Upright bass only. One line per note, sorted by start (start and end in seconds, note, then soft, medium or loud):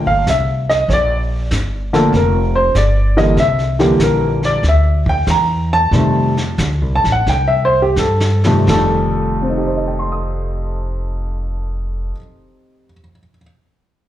0.06 0.25 G1 medium
0.27 0.87 C2 medium
0.88 1.49 A#1 medium
1.51 2.12 G1 medium
2.12 2.73 F1 medium
2.75 3.36 G1 medium
3.37 3.98 C2 medium
4.00 4.61 A#1 medium
4.63 5.25 D2 medium
5.27 5.90 E2 medium
5.91 6.56 F2 medium
6.58 6.81 D2 medium
6.81 7.04 C2 medium
7.04 7.25 A1 medium
7.26 7.94 C2 medium
7.96 8.66 G2 medium
8.68 12.09 F1 medium